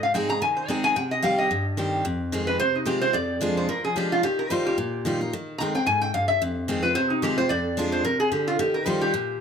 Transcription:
Already playing: G#2
0.03 F5
0.14 G#3 C4 D#4 G#4 G5
0.29 D#4 G#4 A#5
0.42 D#3 G#5
0.57 C5
0.68 G#3 C4 D#4 G#4 D#5
0.84 G#5
0.96 C3 G5
1.11 D#5
1.22 D#3 G3 C4 G4 F5
1.38 D#5
1.51 G2
1.77 D#3 G3 C4 G4
2.05 F2
2.32 D#3 G#3 C4 F4
2.47 B4
2.60 C3 C5
2.75 D#4
2.85 D#3 G#3 C4 F4 G4
3.02 C5
3.13 F2 D5
3.41 F3 G#3 D4 F4
3.57 C5
3.69 F3 A#4
3.84 G#4
3.96 F3 G#3 D4 F4 G4
4.12 F4
4.23 D#3 G4
4.39 A#4
4.50 D#3 G3 D#4 F4 C5
4.66 G4
4.78 A#2
5.05 D#3 G3 D#4 F4
5.21 D#4 F4
5.33 D#3
5.58 D#3 G#3 C4 A#5
5.75 G#3 C4 G5
5.86 G#2 G#5
6.01 G5
6.14 G2 F5
6.28 E5
6.42 F2
6.68 D#3 G#3 C4 F4
6.83 C4 F4 B4
6.95 C3 C5
7.10 D#4
7.22 D#3 G#3 C4 F4 G4
7.38 C4 F4 C5
7.49 F2 D5
7.77 F3 G#3 D4 F4
7.92 C5
8.05 C3 A#4
8.20 G#4
8.32 D3 G4
8.48 F4
8.59 D#3 G4
8.74 A#4
8.86 D#3 G3 D#4 F4 C5
9.01 G4
9.14 A#2

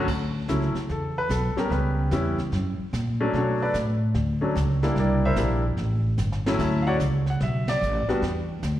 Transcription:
0.08 D2, brush sweep, kick, snare, crash
0.48 C#2 F#3 A3 C#4 E4, kick, snare, hi-hat pedal
0.62 snare
0.75 muted upright bass stroke, snare
0.89 E2 A4, brush sweep, kick, snare
1.18 B4
1.29 B1 A4, kick, snare, hi-hat pedal
1.56 G3 B3 C#4 G4 A#4, muted upright bass stroke, snare
1.70 C#2 B4, brush sweep, kick, snare
2.11 E2 G3 B3 C#4 E4, kick, snare, hi-hat pedal
2.38 snare
2.52 F#2, brush sweep, kick, snare
2.79 muted upright bass stroke
2.93 A#2, kick, snare, hi-hat pedal
3.20 F#3 A3 C#4 D4
3.33 B2 A4 C#5, brush sweep, kick, snare
3.38 C#4 F#4
3.62 D4 A4 B4 D5
3.74 A2, kick, snare, hi-hat pedal
4.14 D2, brush sweep, kick, snare
4.41 F#3 A3 C#4 D4
4.55 C#2, kick, snare, hi-hat pedal
4.83 G3 A#3 D4 E4, snare
4.96 C2 A#4 D5, brush sweep, kick, snare
5.00 D4 G4
5.25 E4 A#4 C5 E5
5.36 A#1 G3 A#3 D4 E4, snare, hi-hat pedal
5.77 A1, brush sweep, kick, snare
6.18 G1, snare, hi-hat pedal
6.32 snare
6.46 F#3 A3 C#4 E4, snare
6.59 D2 E4 A4 C#5 E5, brush sweep, kick, snare, crash
6.82 F5
6.87 F#4 C#5 D5 F#5
7.00 C#2, kick, snare, hi-hat pedal
7.26 F#5, snare
7.40 B1 E5, brush sweep, kick, snare
7.68 D5, snare, ride
7.81 A1, hi-hat pedal
8.08 G3 B3 D4 F#4 B4, muted upright bass stroke, snare
8.22 E2, brush sweep, kick, snare
8.63 D2, kick, snare, hi-hat pedal

